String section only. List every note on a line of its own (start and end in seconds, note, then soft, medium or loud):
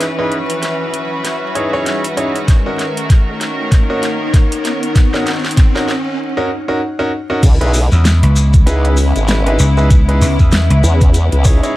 0.00 2.44 E3 medium
0.00 6.16 C#4 medium
0.00 6.16 F#4 medium
0.00 2.44 B4 medium
2.48 6.16 D#3 medium
2.48 6.16 A#4 medium
7.43 11.77 C#3 medium
7.43 11.77 G#3 medium
7.43 11.77 B3 medium
7.43 11.77 E4 medium